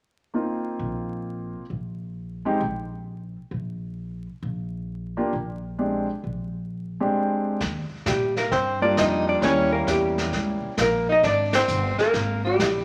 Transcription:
0.34 1.61 A#3 soft
0.34 1.61 C4 soft
0.34 1.61 D#4 soft
0.34 1.62 F4 soft
0.79 1.54 A#1 medium
1.70 2.45 A#1 medium
2.45 2.59 G#3 medium
2.45 2.60 C4 medium
2.45 2.60 D#4 medium
2.45 2.60 G4 medium
2.60 3.35 A#1 medium
3.51 4.26 A#1 medium
4.43 5.17 A#1 medium
5.17 5.31 A#3 medium
5.17 5.31 D4 soft
5.17 5.32 F4 soft
5.17 5.32 G4 medium
5.33 6.08 A#1 medium
5.79 6.06 G#3 soft
5.79 6.06 C4 soft
5.79 6.06 D4 soft
5.79 6.06 G4 soft
6.24 6.98 A#1 medium
7.00 7.58 G#3 medium
7.00 7.58 C4 medium
7.00 7.58 D4 medium
7.00 7.58 G4 medium
7.60 7.88 D#2 medium
7.60 brush sweep soft
7.60 kick soft
7.60 snare soft
7.90 muted upright bass stroke soft
8.06 8.50 A#2 medium
8.06 8.34 G3 medium
8.06 8.37 G4 medium
8.06 kick soft
8.06 snare medium
8.06 hi-hat pedal soft
8.36 8.51 A#3 medium
8.36 8.53 A#4 medium
8.36 snare soft
8.51 8.95 G2 medium
8.51 8.79 C4 medium
8.51 8.82 C5 medium
8.51 brush sweep soft
8.51 kick soft
8.51 snare soft
8.81 9.39 G3 medium
8.81 9.39 A#3 medium
8.81 8.96 D4 medium
8.81 9.39 D4 medium
8.81 9.39 F4 medium
8.81 8.97 D5 medium
8.97 9.40 F2 medium
8.97 9.25 D#4 medium
8.97 9.25 D#5 medium
8.97 kick soft
8.97 snare medium
8.97 hi-hat pedal medium
9.27 9.41 D4 medium
9.27 9.43 D5 medium
9.41 9.86 D#2 medium
9.41 10.68 G3 medium
9.41 10.68 A#3 medium
9.41 10.68 C#4 medium
9.41 9.70 C#4 medium
9.41 10.68 E4 medium
9.41 9.74 C#5 medium
9.41 brush sweep soft
9.41 kick soft
9.41 snare soft
9.73 9.87 A#3 medium
9.73 9.88 A#4 medium
9.87 10.31 E2 medium
9.87 10.31 G3 medium
9.87 10.31 G4 medium
9.87 kick soft
9.87 snare medium
9.87 hi-hat pedal medium
10.18 snare soft
10.32 10.60 C#2 medium
10.32 brush sweep soft
10.32 kick soft
10.32 snare soft
10.62 muted upright bass stroke soft
10.77 11.21 A#1 medium
10.77 11.07 A#3 medium
10.77 kick soft
10.77 snare medium
10.77 hi-hat pedal soft
10.82 11.10 A#4 medium
11.09 11.23 D#4 medium
11.09 11.24 D#5 loud
11.23 11.67 G#1 medium
11.23 11.51 D4 medium
11.23 11.53 D5 medium
11.23 brush sweep soft
11.23 kick soft
11.23 snare soft
11.53 11.96 C4 medium
11.53 12.01 C5 medium
11.53 snare medium
11.53 ride medium
11.68 11.96 G1 medium
11.68 hi-hat pedal medium
11.98 12.40 A#3 medium
11.98 12.42 A#4 medium
11.98 muted upright bass stroke soft
11.98 snare soft
12.14 12.58 G#1 medium
12.14 brush sweep soft
12.14 kick soft
12.14 snare soft
12.44 12.85 G3 medium
12.44 12.85 G4 medium
12.59 12.85 A#1 medium
12.59 kick soft
12.59 snare medium
12.59 hi-hat pedal medium

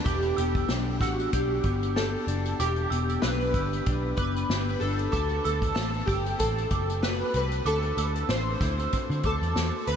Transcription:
0.00 0.38 B3 medium
0.00 0.70 D4 medium
0.04 0.31 E1 medium
0.04 2.59 E3 medium
0.04 0.36 G4 medium
0.04 1.01 G4 medium
0.04 0.37 D6 medium
0.04 kick loud
0.04 closed hi-hat medium
0.22 closed hi-hat soft
0.36 0.63 E1 loud
0.36 1.63 B3 medium
0.36 0.97 G4 medium
0.36 0.67 E6 medium
0.36 closed hi-hat medium
0.55 kick medium
0.55 closed hi-hat medium
0.69 1.01 B1 loud
0.69 1.33 D4 medium
0.69 snare loud
1.01 1.26 A1 medium
1.01 1.30 F#4 medium
1.01 1.31 E6 medium
1.01 kick medium
1.01 snare soft
1.01 closed hi-hat medium
1.19 closed hi-hat soft
1.33 1.58 B1 medium
1.33 2.27 D4 medium
1.33 1.98 G4 medium
1.33 kick medium
1.33 closed hi-hat loud
1.64 2.15 G1 medium
1.64 2.90 B3 medium
1.64 2.11 D6 medium
1.64 kick medium
1.64 closed hi-hat medium
1.83 closed hi-hat medium
1.96 2.59 G4 medium
1.96 2.55 A4 medium
1.96 snare medium
2.27 2.53 F#1 medium
2.27 3.23 D4 medium
2.27 closed hi-hat medium
2.45 closed hi-hat medium
2.60 2.85 E1 loud
2.60 5.13 E3 medium
2.60 3.19 G4 medium
2.60 3.54 G4 medium
2.60 2.90 D6 medium
2.60 closed hi-hat medium
2.76 closed hi-hat soft
2.90 3.16 E1 loud
2.90 4.18 B3 medium
2.90 3.21 E6 medium
2.90 closed hi-hat medium
3.10 closed hi-hat medium
3.22 3.55 B1 medium
3.22 3.86 D4 medium
3.22 4.15 B4 medium
3.22 snare loud
3.41 closed hi-hat soft
3.54 3.79 G1 medium
3.54 4.50 G4 medium
3.54 3.84 E6 medium
3.54 kick medium
3.54 closed hi-hat medium
3.73 closed hi-hat soft
3.86 4.12 B1 medium
3.86 4.82 D4 medium
3.86 kick medium
3.86 closed hi-hat loud
4.17 4.43 F#1 medium
4.17 5.20 B3 medium
4.17 4.82 B4 medium
4.17 4.48 D6 medium
4.17 kick medium
4.17 closed hi-hat medium
4.36 closed hi-hat medium
4.49 4.75 G1 medium
4.49 5.14 G4 medium
4.49 snare medium
4.68 closed hi-hat soft
4.80 5.06 G1 medium
4.80 5.76 D4 medium
4.80 5.10 A4 medium
4.80 open hi-hat soft
4.99 closed hi-hat medium
5.12 5.38 D2 loud
5.12 7.66 D3 medium
5.12 6.09 F#4 medium
5.12 5.43 A4 medium
5.12 5.43 D6 medium
5.12 kick loud
5.12 closed hi-hat medium
5.29 closed hi-hat soft
5.44 5.70 D2 medium
5.44 6.70 A3 medium
5.44 5.73 A4 medium
5.44 5.75 E6 medium
5.44 closed hi-hat medium
5.62 kick medium
5.62 closed hi-hat medium
5.75 6.01 A1 medium
5.75 6.39 C4 medium
5.75 6.08 A4 medium
5.75 snare loud
5.94 closed hi-hat soft
6.06 6.33 G1 medium
6.06 6.40 G4 medium
6.06 6.38 E6 medium
6.06 kick medium
6.06 closed hi-hat medium
6.26 closed hi-hat medium
6.39 6.65 A1 medium
6.39 7.34 C4 medium
6.39 7.04 A4 medium
6.39 kick medium
6.39 closed hi-hat loud
6.58 closed hi-hat soft
6.70 7.22 F#1 medium
6.70 7.97 A3 medium
6.70 7.17 D6 medium
6.70 kick medium
6.70 closed hi-hat medium
6.90 closed hi-hat medium
7.03 7.66 F#4 medium
7.03 7.32 B4 medium
7.03 snare loud
7.21 closed hi-hat soft
7.34 7.60 C2 medium
7.34 8.28 C4 medium
7.34 7.68 B4 medium
7.34 closed hi-hat medium
7.52 closed hi-hat medium
7.65 7.91 D2 loud
7.65 9.96 D3 medium
7.65 8.61 F#4 medium
7.65 8.32 A4 loud
7.65 7.98 D6 loud
7.65 closed hi-hat medium
7.82 closed hi-hat soft
7.97 8.23 D2 medium
7.97 9.23 A3 medium
7.97 8.28 E6 medium
7.97 closed hi-hat medium
8.16 closed hi-hat medium
8.29 8.54 A1 medium
8.29 8.92 C4 medium
8.29 9.28 C5 medium
8.29 snare loud
8.61 8.86 D2 medium
8.61 8.78 E4 medium
8.61 8.91 E6 medium
8.61 kick loud
8.61 snare soft
8.61 closed hi-hat medium
8.78 9.56 F#4 medium
8.78 closed hi-hat soft
8.93 9.88 C4 medium
8.93 kick medium
8.93 closed hi-hat loud
9.10 9.21 D3 loud
9.10 closed hi-hat soft
9.23 9.38 D2 medium
9.23 9.96 A3 medium
9.23 9.84 A4 medium
9.23 9.55 D6 medium
9.23 kick medium
9.23 closed hi-hat medium
9.42 9.53 E2 medium
9.42 closed hi-hat medium
9.56 9.70 E2 medium
9.56 9.96 F#4 medium
9.56 snare medium
9.87 9.96 D2 medium
9.87 9.96 C4 medium
9.87 9.96 B4 loud
9.87 closed hi-hat medium

